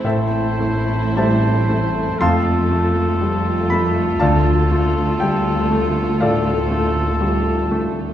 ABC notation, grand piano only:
X:1
M:4/4
L:1/8
Q:1/4=60
K:Am
V:1 name="Grand piano"
[Ace]2 [cea]2 [fac']3 b | [dfa]2 g2 [Adf]3 z |]
V:2 name="Grand piano" clef=bass
A,, A, G, A, F,, A, G, A, | D,, A, G, A, A,, A, G, A, |]